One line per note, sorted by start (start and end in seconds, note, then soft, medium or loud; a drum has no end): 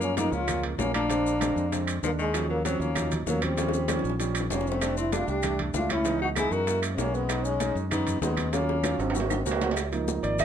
0.00 0.29 F#2 medium
0.00 0.16 A#3 medium
0.00 0.16 C#4 medium
0.00 high bongo soft
0.00 high conga soft
0.00 maracas medium
0.17 0.39 F3 medium
0.17 0.39 G#3 medium
0.17 0.33 A#3 medium
0.17 0.39 A#3 medium
0.17 0.35 D#4 loud
0.17 high bongo medium
0.17 high conga loud
0.17 high timbale medium
0.17 maracas medium
0.32 0.75 C#2 medium
0.32 0.63 C#4 medium
0.32 0.64 F4 medium
0.32 high bongo soft
0.32 high conga soft
0.32 maracas soft
0.47 0.69 F3 medium
0.47 0.70 G#3 medium
0.47 0.70 A#3 medium
0.47 high bongo medium
0.47 high conga soft
0.47 low conga medium
0.47 high timbale medium
0.47 claves medium
0.47 maracas medium
0.63 high bongo soft
0.63 high conga soft
0.63 high timbale medium
0.78 1.51 A#1 medium
0.78 1.00 F3 medium
0.78 1.01 G#3 medium
0.78 0.93 A#3 medium
0.78 1.01 A#3 medium
0.78 0.93 C#4 medium
0.78 high bongo medium
0.78 low bongo medium
0.78 high conga medium
0.78 low timbale medium
0.78 maracas medium
0.94 1.83 A#3 medium
0.94 1.84 D4 loud
0.94 high conga medium
0.94 high timbale medium
0.94 claves medium
0.94 maracas soft
1.09 1.31 D3 medium
1.09 1.31 G#3 medium
1.09 1.32 C4 medium
1.09 high bongo medium
1.09 high timbale medium
1.09 maracas medium
1.26 high bongo soft
1.26 high conga soft
1.26 maracas medium
1.40 1.62 D3 medium
1.40 1.63 G#3 medium
1.40 1.63 C4 medium
1.40 high bongo medium
1.40 high conga medium
1.40 high timbale medium
1.40 claves medium
1.40 maracas medium
1.56 2.00 F2 medium
1.56 high bongo soft
1.56 maracas soft
1.72 1.94 D3 medium
1.72 1.94 G#3 medium
1.72 1.94 C4 medium
1.72 high bongo medium
1.72 high conga soft
1.72 high timbale medium
1.72 maracas medium
1.87 high bongo soft
1.87 high timbale medium
1.87 claves medium
1.87 maracas medium
2.03 2.75 D#2 medium
2.03 2.25 D3 medium
2.03 2.11 F3 medium
2.03 2.25 G#3 medium
2.03 2.11 A#3 medium
2.03 2.25 D4 medium
2.03 high bongo medium
2.03 low bongo medium
2.03 maracas medium
2.19 2.48 D#3 medium
2.19 2.48 G#3 medium
2.19 high conga soft
2.19 maracas soft
2.34 2.56 F3 medium
2.34 2.56 F#3 medium
2.34 2.56 C#4 medium
2.34 high bongo medium
2.34 high conga soft
2.34 high timbale medium
2.34 claves medium
2.34 maracas medium
2.50 2.64 F#3 medium
2.50 2.65 A#3 medium
2.50 high bongo soft
2.50 high conga soft
2.65 2.87 F3 medium
2.65 2.82 F#3 medium
2.65 2.87 F#3 medium
2.65 2.83 C4 medium
2.65 2.87 C#4 medium
2.65 high bongo medium
2.65 high conga medium
2.65 high timbale medium
2.65 maracas medium
2.80 3.23 D#2 loud
2.80 3.12 A#3 medium
2.80 3.12 C#4 medium
2.80 high bongo soft
2.80 high conga soft
2.80 maracas soft
2.95 3.18 F3 medium
2.95 3.18 F#3 medium
2.95 3.18 D#4 medium
2.95 high bongo medium
2.95 high conga soft
2.95 low conga medium
2.95 high timbale medium
2.95 claves medium
2.95 maracas medium
3.12 high bongo soft
3.12 high conga soft
3.12 low conga medium
3.12 high timbale medium
3.12 maracas medium
3.26 3.99 D#2 medium
3.26 3.48 F3 medium
3.26 3.49 F#3 medium
3.26 3.44 F#3 medium
3.26 3.45 A#3 medium
3.26 3.49 C#4 medium
3.26 high bongo medium
3.26 low bongo medium
3.26 high conga medium
3.26 maracas medium
3.42 4.08 G3 medium
3.42 4.09 C4 medium
3.42 high conga medium
3.42 high timbale medium
3.42 claves medium
3.42 maracas soft
3.57 3.79 F3 medium
3.57 3.79 G3 medium
3.57 3.79 C#4 medium
3.57 high bongo medium
3.57 high conga soft
3.57 high timbale medium
3.57 maracas medium
3.69 high bongo medium
3.74 maracas medium
3.88 4.10 F3 medium
3.88 4.10 G3 medium
3.88 4.11 C#4 medium
3.88 high bongo medium
3.88 high conga medium
3.88 high timbale medium
3.88 claves medium
3.88 maracas medium
3.99 low bongo medium
4.04 4.47 A#1 medium
4.04 maracas soft
4.10 low bongo medium
4.20 4.41 F3 medium
4.20 4.42 G3 medium
4.20 4.42 C#4 medium
4.20 low bongo medium
4.20 high conga soft
4.20 high timbale medium
4.20 maracas medium
4.35 high conga soft
4.35 high timbale medium
4.35 claves medium
4.35 maracas medium
4.40 low bongo medium
4.50 5.22 F1 medium
4.50 4.72 F3 medium
4.50 4.72 G3 medium
4.50 4.70 A#3 medium
4.50 4.73 C#4 medium
4.50 4.70 C#4 medium
4.50 low bongo medium
4.50 high conga soft
4.50 low timbale medium
4.50 maracas medium
4.61 low bongo medium
4.67 4.97 A3 medium
4.67 4.98 C4 medium
4.67 high conga soft
4.67 maracas soft
4.72 low bongo medium
4.81 5.03 G3 medium
4.81 5.03 A3 medium
4.81 5.04 D4 medium
4.81 high bongo medium
4.81 high conga soft
4.81 high timbale medium
4.81 claves medium
4.81 maracas medium
4.97 5.12 C4 medium
4.97 5.13 E4 medium
4.97 high bongo soft
4.97 high conga soft
4.97 maracas medium
5.12 5.34 G3 medium
5.12 5.34 A3 medium
5.12 5.29 D4 medium
5.12 5.35 D4 medium
5.12 5.31 F4 medium
5.12 high bongo medium
5.12 high conga medium
5.12 high timbale medium
5.12 maracas medium
5.28 5.71 C2 medium
5.28 5.59 D4 medium
5.28 5.60 G4 medium
5.28 high bongo soft
5.28 high conga soft
5.28 maracas soft
5.43 5.65 G3 medium
5.43 5.65 A3 medium
5.43 5.65 D4 medium
5.43 high bongo medium
5.43 high conga soft
5.43 low conga medium
5.43 high timbale medium
5.43 claves medium
5.43 maracas medium
5.59 high bongo soft
5.59 high conga soft
5.59 low conga medium
5.59 high timbale medium
5.74 6.46 C#2 loud
5.74 5.96 G3 medium
5.74 5.96 A3 medium
5.74 5.90 D4 medium
5.74 5.96 E4 medium
5.74 5.90 F4 medium
5.74 high bongo medium
5.74 low bongo medium
5.74 high conga medium
5.74 maracas medium
5.90 6.19 C#4 medium
5.90 6.20 E4 loud
5.90 high conga medium
5.90 high timbale medium
5.90 claves medium
5.90 maracas soft
6.05 6.27 E3 medium
6.05 6.27 B3 medium
6.05 6.28 D#4 medium
6.05 high bongo medium
6.05 high conga soft
6.05 high timbale medium
6.05 maracas medium
6.20 6.29 D#4 medium
6.20 6.29 F#4 loud
6.20 high bongo soft
6.20 high conga soft
6.35 6.58 E3 medium
6.35 6.58 B3 medium
6.35 6.58 D#4 medium
6.35 6.54 E4 medium
6.35 6.54 G#4 loud
6.35 high bongo medium
6.35 high conga medium
6.35 high timbale medium
6.35 claves medium
6.35 maracas medium
6.51 6.95 F#2 medium
6.51 6.83 F#4 medium
6.51 6.83 A#4 medium
6.51 high bongo soft
6.51 maracas soft
6.67 6.89 G#3 medium
6.67 6.89 A#3 medium
6.67 6.89 E4 medium
6.67 high bongo medium
6.67 high timbale medium
6.67 maracas medium
6.82 high bongo soft
6.82 high conga soft
6.82 high timbale loud
6.82 claves medium
6.82 maracas medium
6.94 7.70 B1 loud
6.94 7.00 G#3 medium
6.94 7.20 G#3 medium
6.94 7.20 A#3 medium
6.94 7.00 C4 medium
6.98 7.17 A#3 medium
6.98 7.20 C#4 medium
6.98 7.16 C#4 loud
6.98 high bongo medium
6.98 low bongo medium
6.98 low timbale medium
6.98 maracas medium
7.14 7.45 G#3 medium
7.14 7.46 B3 medium
7.14 high conga soft
7.14 maracas soft
7.28 7.51 G#3 medium
7.28 7.51 C#4 medium
7.28 7.51 D#4 medium
7.28 high bongo medium
7.28 high conga soft
7.28 high timbale medium
7.28 claves medium
7.28 maracas medium
7.45 7.76 G#3 medium
7.45 7.76 C#4 loud
7.45 high bongo soft
7.45 high conga soft
7.45 maracas medium
7.60 7.82 G#3 medium
7.60 7.82 C#4 medium
7.60 7.82 D#4 medium
7.60 high bongo medium
7.60 high conga medium
7.60 high timbale medium
7.60 maracas medium
7.75 8.19 F#2 medium
7.75 high bongo soft
7.75 high conga soft
7.75 maracas soft
7.90 8.13 G#3 medium
7.90 8.20 B3 medium
7.90 8.13 C#4 medium
7.90 8.20 D#4 medium
7.90 8.14 D#4 medium
7.90 high bongo medium
7.90 high conga soft
7.90 low conga medium
7.90 high timbale medium
7.90 claves medium
7.90 maracas medium
8.07 high bongo soft
8.07 high conga soft
8.07 low conga medium
8.07 high timbale medium
8.07 maracas medium
8.21 8.94 D#2 medium
8.21 8.54 G#3 medium
8.21 8.44 G#3 medium
8.21 8.54 B3 medium
8.21 8.44 C#4 medium
8.21 8.44 D#4 medium
8.21 high bongo medium
8.21 low bongo medium
8.21 high conga medium
8.21 low timbale medium
8.21 maracas medium
8.37 high conga medium
8.37 high timbale medium
8.37 claves medium
8.37 maracas soft
8.53 8.75 F#3 medium
8.53 9.00 A#3 medium
8.53 9.02 C#4 medium
8.53 8.75 C#4 medium
8.53 8.75 F4 medium
8.53 high bongo medium
8.53 high conga soft
8.53 high timbale medium
8.53 maracas medium
8.69 high bongo medium
8.69 high conga soft
8.83 9.06 F#3 medium
8.83 9.06 C#4 medium
8.83 9.06 F4 medium
8.83 low bongo medium
8.83 high conga medium
8.83 high timbale medium
8.83 claves medium
8.83 maracas medium
8.98 9.42 G#1 medium
8.98 9.61 G#3 medium
8.98 9.62 C4 medium
8.98 high timbale medium
8.98 maracas soft
9.10 high timbale medium
9.15 9.37 A#3 medium
9.15 9.37 C4 medium
9.15 9.37 F#4 medium
9.15 low bongo medium
9.15 high conga soft
9.15 maracas medium
9.20 low timbale medium
9.30 low bongo loud
9.30 high conga soft
9.30 high timbale medium
9.30 claves medium
9.30 maracas medium
9.46 10.18 C#2 medium
9.46 9.68 A#3 medium
9.46 9.68 C4 medium
9.46 9.68 F#4 medium
9.46 low bongo loud
9.46 maracas medium
9.51 low timbale loud
9.61 low bongo medium
9.61 low timbale loud
9.61 maracas soft
9.71 low timbale medium
9.77 high bongo medium
9.77 high timbale medium
9.77 claves medium
9.77 maracas medium
9.92 10.45 F3 medium
9.92 10.45 A#3 soft
9.92 10.45 D#4 medium
9.92 high bongo soft
9.92 high conga soft
9.92 high timbale medium
9.92 maracas soft
10.08 high bongo medium
10.08 high conga medium
10.08 low timbale medium
10.08 maracas medium
10.23 10.45 G#1 loud
10.23 10.38 D5 medium
10.23 high bongo soft
10.23 high timbale medium
10.23 maracas soft
10.39 10.45 D#5 medium
10.39 high bongo medium
10.39 high conga soft
10.39 low conga medium
10.39 high timbale medium
10.39 claves medium
10.39 maracas medium